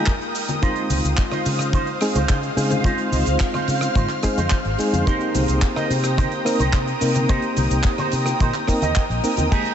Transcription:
Already playing: D#4 G4 G#4 A#4 G5 D#6
0.06 kick, clap, closed hi-hat, cabasa
0.21 closed hi-hat
0.35 muted clean electric guitar stroke, open hi-hat, cabasa
0.48 closed hi-hat, high bongo, high conga, cabasa
0.61 G#3 C4 D#4 F4 C5 F5, kick, closed hi-hat, cabasa
0.76 closed hi-hat
0.90 C#2, open hi-hat, high bongo, high conga, cabasa
1.04 C#2, closed hi-hat, cabasa
1.17 kick, clap, closed hi-hat, cabasa
1.32 D#4 F4 C5, cross-stick, closed hi-hat, high conga
1.46 C#3, open hi-hat, cabasa
1.59 muted clean electric guitar stroke, cross-stick, closed hi-hat, cabasa
1.73 D#4 F4 C5, kick, closed hi-hat, high conga, cabasa
1.87 closed hi-hat
2.01 G#3 C4 D#4 G#4, muted clean electric guitar stroke, cross-stick, open hi-hat, cabasa
2.15 C#2 D#4 F4 C5, closed hi-hat, high conga, cabasa
2.29 C#3, kick, clap, closed hi-hat, cabasa
2.43 closed hi-hat
2.56 C#3 G#3 C4 D#4 G#4, muted clean electric guitar stroke, open hi-hat, cabasa
2.70 closed hi-hat, high conga, low conga, cabasa
2.84 G#3 C4 D#4 F4 C5 F6, kick, closed hi-hat, cabasa
2.98 closed hi-hat
3.12 C#2, open hi-hat, high bongo, high conga, cabasa
3.26 C#2, closed hi-hat, cabasa
3.40 kick, clap, closed hi-hat, cabasa
3.54 D#4 F4 C5, cross-stick, closed hi-hat, high conga, low conga
3.68 C#3, open hi-hat, cabasa
3.81 muted clean electric guitar stroke, cross-stick, closed hi-hat, high bongo, cabasa
3.95 G#2 D#4 F4 C5, kick, closed hi-hat, high conga, cabasa
4.09 clap, closed hi-hat
4.23 G#3 C4 D#4 G#4, muted clean electric guitar stroke, kick, cross-stick, open hi-hat, high bongo, cabasa
4.37 F2 D#4 F4 C5, closed hi-hat, high conga, cabasa
4.50 kick, clap, closed hi-hat, cabasa
4.65 G#1, closed hi-hat
4.79 G#3 C4 D#4 G#4, muted clean electric guitar stroke, open hi-hat, cabasa
4.93 F2, closed hi-hat, high bongo, high conga, cabasa
5.06 A#3 C4 D#4 G4 A#4 C5 G5 A#5 D#6, kick, closed hi-hat, cabasa
5.21 closed hi-hat
5.35 C2, open hi-hat, high bongo, high conga, cabasa
5.48 C2, closed hi-hat, cabasa
5.62 kick, clap, closed hi-hat, cabasa
5.76 D#4 A#4 D#5, cross-stick, closed hi-hat, high conga
5.90 C3, open hi-hat, cabasa
6.04 muted clean electric guitar stroke, cross-stick, closed hi-hat, cabasa
6.17 D#4 A#4 C5, kick, closed hi-hat, high conga, cabasa
6.32 closed hi-hat
6.45 A#3 C4 D#4 A#4, muted clean electric guitar stroke, cross-stick, open hi-hat, cabasa
6.59 C2 D#4 A#4 C5, closed hi-hat, high conga, cabasa
6.73 C3, kick, clap, closed hi-hat, cabasa
6.87 closed hi-hat
7.01 C3 A#3 C4 D#4 A#4, muted clean electric guitar stroke, open hi-hat, cabasa
7.15 closed hi-hat, high conga, low conga, cabasa
7.28 A#3 C4 D#4 G4 A#4 C5, kick, closed hi-hat, cabasa
7.42 closed hi-hat
7.57 C2, open hi-hat, high bongo, high conga, cabasa
7.71 C2, closed hi-hat, cabasa
7.83 kick, clap, closed hi-hat, cabasa
7.98 D#4 A#4 C5, cross-stick, closed hi-hat, high conga, low conga
8.12 C3, open hi-hat, cabasa
8.26 muted clean electric guitar stroke, cross-stick, closed hi-hat, high bongo, cabasa
8.40 A#2 D#4 A#4 C5, kick, closed hi-hat, high conga, cabasa
8.54 clap, closed hi-hat
8.67 A#3 C4 D#4 A#4, muted clean electric guitar stroke, kick, cross-stick, open hi-hat, high bongo, cabasa
8.82 D#2 D#4 A#4 D#5, closed hi-hat, high conga, cabasa
8.95 kick, clap, closed hi-hat, cabasa
9.10 A#1, closed hi-hat
9.23 A#3 C4 D#4 A#4, muted clean electric guitar stroke, open hi-hat, cabasa
9.37 D#2, closed hi-hat, high bongo, high conga, cabasa
9.51 G#3 A#3 D#4 G4 G#4 A#4 G5, kick, closed hi-hat, crash, cabasa
9.65 closed hi-hat

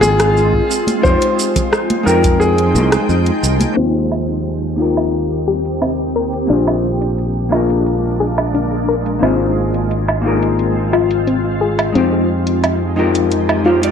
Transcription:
Already playing: G#1 G#3 A#3 C4 D#4 F4 G#4 A#4
0.01 G#4, high conga, low conga, shaker
0.20 cross-stick, closed hi-hat, shaker
0.37 shaker
0.54 kick
0.71 shaker
0.87 closed hi-hat, high conga, shaker
1.02 F2 F3 G#3 D#4 F4 C5 G5, kick, shaker
1.06 G4 C5
1.22 closed hi-hat
1.39 shaker
1.56 kick, closed hi-hat, low conga, shaker
1.73 cross-stick, shaker
1.90 closed hi-hat, high conga
2.03 F2 G#3 D#4 F4 A#4
2.07 A#4 G5, shaker
2.24 kick, closed hi-hat, shaker
2.40 G#4, shaker
2.58 closed hi-hat
2.75 C2, high conga, shaker
2.92 cross-stick, closed hi-hat, shaker
3.09 F2, shaker
3.26 closed hi-hat
3.43 C2, shaker
3.60 closed hi-hat, high conga, shaker
3.74 D#2 D#3 A#3 C4 D#4 F4 G4, closed hi-hat
3.78 G4 C5
4.12 low woodblock
4.29 closed hi-hat
4.46 closed hi-hat
4.76 A#3 D#4 F4
4.81 G4 A#4
4.97 closed hi-hat, low woodblock
5.14 closed hi-hat
5.48 G4
5.65 closed hi-hat
5.82 C4, closed hi-hat, low woodblock
6.16 A#4
6.33 closed hi-hat
6.47 A#1 G#3 A#3 D4 F4, closed hi-hat
6.51 G#4 C5
6.67 low woodblock
7.02 closed hi-hat
7.18 closed hi-hat
7.49 A#3 D4 F4, low woodblock
7.54 G#4 A#4
7.70 closed hi-hat
7.87 closed hi-hat
8.20 G#4
8.38 closed hi-hat, low woodblock
8.54 D4, closed hi-hat
8.89 A#4
9.06 closed hi-hat
9.19 G#1 A#3 C4 D#4 F4, closed hi-hat, low woodblock
9.24 G#4 C5
9.74 closed hi-hat
9.91 closed hi-hat
10.08 low woodblock
10.22 A#3 D#4 F4
10.26 G#4 A#4
10.43 closed hi-hat
10.59 closed hi-hat
10.93 F4, low woodblock
11.11 closed hi-hat
11.27 C4, closed hi-hat
11.61 G#4
11.79 closed hi-hat, low woodblock
11.92 F2 F3 G#3 C4 D#4 F4 G4, closed hi-hat
11.97 G4 C5
12.47 closed hi-hat
12.64 closed hi-hat, low woodblock
12.96 G#3 D#4 F4 G4 A#4
13.15 closed hi-hat
13.31 closed hi-hat
13.49 low woodblock
13.64 G#3 D#4 F4 G4 C5
13.81 G#3 D#4 F4 G4 D5, closed hi-hat

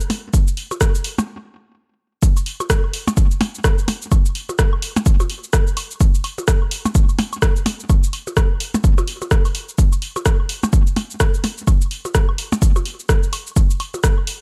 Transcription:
0.00 shaker
0.10 open hi-hat, percussion blips
0.34 kick, shaker
0.48 shaker
0.57 open hi-hat
0.71 percussion blips, high woodblock, shaker
0.81 kick, cross-stick, shaker
0.95 shaker
1.04 open hi-hat
1.18 percussion blips, high woodblock, shaker
2.23 kick, shaker
2.37 high woodblock, shaker
2.46 open hi-hat
2.60 percussion blips, high woodblock, shaker
2.70 kick, cross-stick, shaker
2.84 high woodblock
2.93 open hi-hat
3.08 percussion blips, high woodblock, shaker
3.17 kick, shaker
3.31 shaker
3.41 open hi-hat, percussion blips, high woodblock
3.55 shaker
3.64 kick, cross-stick, high woodblock, shaker
3.78 shaker
3.88 open hi-hat, percussion blips, high woodblock
4.02 shaker
4.12 kick, high woodblock, shaker
4.26 shaker
4.35 open hi-hat
4.49 percussion blips, high woodblock, shaker
4.59 kick, cross-stick, shaker
4.73 high woodblock
4.82 open hi-hat
4.96 percussion blips, high woodblock, shaker
5.06 kick, shaker
5.20 percussion blips, high woodblock, shaker
5.30 open hi-hat
5.44 shaker
5.53 kick, cross-stick, high woodblock, shaker
5.67 shaker
5.77 open hi-hat, high woodblock
5.91 shaker
6.00 kick, high woodblock, shaker
6.15 shaker
6.24 open hi-hat, high woodblock
6.38 percussion blips, shaker
6.48 kick, cross-stick, shaker
6.62 high woodblock
6.71 open hi-hat
6.85 percussion blips, high woodblock, shaker
6.95 kick, shaker
7.09 high woodblock, shaker
7.19 open hi-hat, percussion blips
7.33 high woodblock, shaker
7.42 kick, cross-stick, shaker
7.56 shaker
7.66 open hi-hat, percussion blips, high woodblock
7.80 shaker
7.89 kick, high woodblock, shaker
8.04 shaker
8.13 open hi-hat, high woodblock
8.27 percussion blips, shaker
8.37 kick, cross-stick, high woodblock, shaker
8.60 open hi-hat
8.74 percussion blips, high woodblock, shaker
8.84 kick, shaker
8.98 percussion blips, high woodblock, shaker
9.08 open hi-hat
9.22 percussion blips, high woodblock, shaker
9.31 kick, cross-stick, shaker
9.45 open hi-hat, high woodblock, shaker
9.55 open hi-hat
9.69 shaker
9.78 kick, shaker
9.92 high woodblock, shaker
10.02 open hi-hat
10.16 percussion blips, high woodblock, shaker
10.26 kick, cross-stick, shaker
10.40 high woodblock
10.49 open hi-hat
10.63 percussion blips, high woodblock, shaker
10.73 kick, shaker
10.87 shaker
10.96 open hi-hat, percussion blips, high woodblock
11.10 shaker
11.20 kick, cross-stick, high woodblock, shaker
11.34 shaker
11.44 open hi-hat, percussion blips, high woodblock
11.58 shaker
11.67 kick, high woodblock, shaker
11.81 shaker
11.91 open hi-hat
12.05 percussion blips, high woodblock, shaker
12.15 kick, cross-stick, shaker
12.29 high woodblock
12.38 open hi-hat
12.52 percussion blips, high woodblock, shaker
12.62 kick, shaker
12.76 percussion blips, high woodblock, shaker
12.86 open hi-hat
13.00 shaker
13.09 kick, cross-stick, high woodblock, shaker
13.23 shaker
13.33 open hi-hat, high woodblock
13.47 shaker
13.56 kick, high woodblock, shaker
13.70 shaker
13.80 open hi-hat, high woodblock
13.94 percussion blips, shaker
14.04 kick, cross-stick, shaker
14.18 high woodblock
14.27 open hi-hat

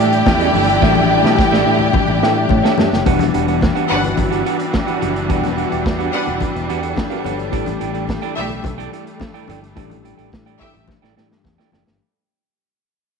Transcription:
Already playing: E3 G3 A3 D4 E4 G4 D5 G5
0.00 A2 G4 A4 E5
0.12 muted clean electric guitar stroke, closed hi-hat
0.26 E2, muted clean electric guitar stroke, kick, snare, high conga
0.40 D4 G4 A4 E5, closed hi-hat, muted conga
0.53 G1 D4 G4 A4 E5, open hi-hat, high conga
0.69 muted clean electric guitar stroke, closed hi-hat
0.80 A1 E3 G3 A3 D4 F#4 G4 A4 E5, kick, snare
0.90 G4
0.95 high conga
1.10 D4 G4 A4 E5
1.24 B1 D4 G4 A4 E5, snare
1.37 kick, snare, high conga
1.51 A1 D4 G4 A4 E5, snare, muted conga
1.66 A2 D4 G4 A4 E5
1.79 muted clean electric guitar stroke, low conga
1.93 kick, high conga, low conga
2.08 A1, muted clean electric guitar stroke, muted conga
2.22 A2 D4 G4 A4 E5 G5, snare
2.35 E5, muted clean electric guitar stroke
2.49 A2 C#5, muted clean electric guitar stroke, kick, muted conga, high conga
2.63 D4 G4 A4 E5, snare
2.77 G2 D4 G4 A4 D5 E5, snare, high conga
2.92 F#1, muted clean electric guitar stroke, snare
3.04 E1 E3 G3 B3 D4 F#4 G4 B4 F#5, kick, closed hi-hat, muted conga
3.19 snare, closed hi-hat, muted conga, high conga
3.34 E1 D4 G4 B4 F#5, closed hi-hat
3.48 D4 G4 B4 F#5, closed hi-hat
3.61 muted clean electric guitar stroke, kick, snare, muted conga
3.75 D4 G4 B4 F#5, closed hi-hat, muted conga
3.89 G1 D4 G4 B4 F#5, open hi-hat
4.04 closed hi-hat, low conga
4.17 G1, muted clean electric guitar stroke, kick, closed hi-hat, muted conga, high conga, low conga
4.31 D4 G4 B4 F#5, closed hi-hat
4.45 D4 G4 B4 F#5, closed hi-hat
4.59 muted clean electric guitar stroke, closed hi-hat
4.73 muted clean electric guitar stroke, kick, snare, muted conga, high conga
4.87 D4 G4 B4 F#5, closed hi-hat, muted conga
5.01 F#1 D4 G4 B4 F#5, closed hi-hat, high conga
5.16 closed hi-hat
5.28 E1 E3 G3 B3 D4 F#4 G4 B4 F#5, kick, closed hi-hat
5.44 snare, closed hi-hat, muted conga, high conga
5.57 D4 G4 B4 F#5, closed hi-hat
5.71 E1 D4 G4 B4 F#5, closed hi-hat
5.86 E2, kick, snare
5.99 D4 G4 B4 F#5, closed hi-hat, muted conga
6.13 D4 G4 B4 F#5, open hi-hat
6.27 E1, muted clean electric guitar stroke, closed hi-hat, low conga
6.41 muted clean electric guitar stroke, kick, closed hi-hat, muted conga, high conga, low conga
6.55 E1, muted clean electric guitar stroke, closed hi-hat
6.69 E2 D4 G4 B4 F#5, closed hi-hat
6.82 D4 F#4 G4 A4 B4 F#5, closed hi-hat
6.96 muted clean electric guitar stroke, kick, snare, high conga
7.10 D4 G4 B4 F#5, closed hi-hat, muted conga
7.24 G1 D4 G4 A4 B4 C#5 F#5, closed hi-hat, high conga
7.38 B4 D5, muted clean electric guitar stroke, closed hi-hat
7.50 A1 E3 G3 A3 D4 E4 G4 A4 D5 G5, kick, closed hi-hat, muted conga
7.55 A3
7.66 closed hi-hat, muted conga, high conga
7.80 A1 E4 A4 D5 G5, closed hi-hat
7.94 E4 A4 D5 G5, closed hi-hat
8.08 kick, snare, muted conga
8.22 E4 A4 D5 G5, closed hi-hat, muted conga
8.36 B1 A3 E4 G4 A4 D5 E5 G5, open hi-hat
8.49 muted clean electric guitar stroke, closed hi-hat, low conga
8.64 B1, muted clean electric guitar stroke, kick, closed hi-hat, muted conga, high conga, low conga
8.78 E4 A4 D5 G5, closed hi-hat, muted conga
8.93 E4 A4 D5 G5, closed hi-hat
9.07 muted clean electric guitar stroke, closed hi-hat
9.20 muted clean electric guitar stroke, kick, snare, high conga
9.34 E4 A4 D5 G5, closed hi-hat
9.48 G1 E4 A4 D5 G5, closed hi-hat, high conga
9.63 muted clean electric guitar stroke, closed hi-hat
9.75 A1 E3 G3 A3 D4 E4 G4 A4 D5 G5, kick, closed hi-hat, muted conga
9.90 closed hi-hat, high conga
10.04 E4 A4 D5 G5, closed hi-hat
10.18 A1 E4 A4 D5 G5, closed hi-hat
10.32 A2, kick, snare, muted conga
10.46 E4 A4 D5 G5, closed hi-hat
10.60 A3 E4 G4 A4 D5 E5 G5, kick, open hi-hat
10.74 A1, muted clean electric guitar stroke, closed hi-hat, low conga
10.87 muted clean electric guitar stroke, kick, snare, muted conga, high conga, low conga
11.02 A1 E4 A4 D5 G5, snare, muted conga
11.17 A2 E3 G3 A3 D4 E4 G4 A4 D5 G5, snare
11.31 G2, muted clean electric guitar stroke, snare
11.44 E2, muted clean electric guitar stroke, kick, snare, high conga
11.58 E4 A4 D5 G5, snare
11.72 F#1 E4 D5 G5, snare, high conga
11.86 G1, muted clean electric guitar stroke, snare

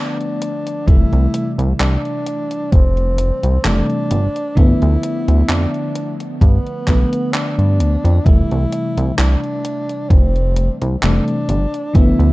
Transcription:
Already playing: D3 F3 A3 B3 D4
0.21 closed hi-hat
0.42 closed hi-hat
0.67 closed hi-hat
0.86 F1 C3 E3 G3 A3 E4, kick, closed hi-hat
1.13 C2, closed hi-hat
1.34 closed hi-hat
1.58 C2, closed hi-hat
1.80 C2 D4, clap, closed hi-hat
2.05 closed hi-hat
2.26 closed hi-hat
2.51 closed hi-hat
2.72 F1 C4, kick, closed hi-hat
2.97 closed hi-hat
3.18 closed hi-hat
3.43 C2, closed hi-hat
3.64 F1 C3 E3 G3 A3 D4, clap, closed hi-hat
3.90 closed hi-hat
4.11 G1, closed hi-hat
4.36 closed hi-hat
4.55 G1 D3 F3 A3 B3 E4, kick, closed hi-hat
4.82 D2, closed hi-hat
5.03 closed hi-hat
5.28 D2, closed hi-hat
5.49 F2 D4, clap, closed hi-hat
5.74 closed hi-hat
5.95 closed hi-hat
6.20 closed hi-hat
6.41 G2 B3, kick, closed hi-hat
6.67 closed hi-hat
6.87 B1 D3 F3 A3 B3, kick, clap, closed hi-hat
7.13 closed hi-hat
7.33 D4, clap, closed hi-hat
7.58 G2, closed hi-hat
7.79 D2, closed hi-hat
8.04 F2, closed hi-hat
8.24 F1 C3 E3 G3 A3 E4, kick, closed hi-hat
8.51 C2, closed hi-hat
8.72 closed hi-hat
8.97 C2, closed hi-hat
9.17 C2 D4, clap, closed hi-hat
9.44 closed hi-hat
9.65 closed hi-hat
9.89 closed hi-hat
10.10 F1 C4, kick, closed hi-hat
10.36 closed hi-hat
10.56 closed hi-hat
10.82 C2, closed hi-hat
11.02 F1 C3 E3 G3 A3 D4, clap, closed hi-hat
11.28 closed hi-hat
11.48 G1, closed hi-hat
11.74 closed hi-hat
11.93 G1 D3 F3 A3 B3 E4, kick, closed hi-hat
12.19 D2, closed hi-hat

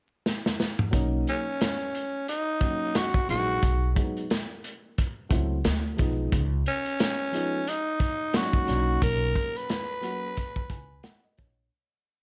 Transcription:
0.26 snare
0.46 snare
0.60 snare
0.79 mid tom
0.91 B1 F#3 A#3 C#4 D#4, kick, closed hi-hat
1.27 C#4, closed hi-hat
1.61 snare, closed hi-hat
1.95 closed hi-hat
2.28 D#4, closed hi-hat
2.60 F#3 A#3 C#4 D#4, kick, closed hi-hat
2.95 F#4, snare, closed hi-hat
3.14 kick
3.28 A#1 F#3 G#3 B3 D#4 F#4, snare, closed hi-hat
3.63 B1, kick, closed hi-hat
3.95 F#3 G#3 B3 D#4, kick, closed hi-hat
4.17 closed hi-hat
4.30 snare, closed hi-hat
4.64 closed hi-hat
4.98 kick, closed hi-hat
5.29 C#2 F#3 A3 C4 E4, kick, closed hi-hat
5.64 D2, snare, closed hi-hat
5.97 B1 F3 G#3 B3 D#4, kick, snare, closed hi-hat
6.32 C#2, kick, closed hi-hat
6.66 C#4, closed hi-hat
6.86 closed hi-hat
7.00 snare, closed hi-hat
7.32 F3 G#3 B3 D#4, closed hi-hat
7.67 D#4, closed hi-hat
8.00 kick, closed hi-hat
8.33 F#3 A#3 C#4 D4 F#4, snare, closed hi-hat
8.42 D#4
8.53 kick
8.66 B1 F#3 A#3 C#4 D4, snare, closed hi-hat
8.75 D#4
9.02 B1 A#4, kick, closed hi-hat
9.35 kick, closed hi-hat
9.56 B4, closed hi-hat
9.69 snare, closed hi-hat
10.01 F#3 A#3 C#4 F#4, closed hi-hat
10.37 kick, closed hi-hat
10.56 kick
10.70 C#2 G#5, kick, closed hi-hat
11.03 F#5, snare, closed hi-hat
11.24 D#5
11.37 A#1 C#5, kick, snare, closed hi-hat

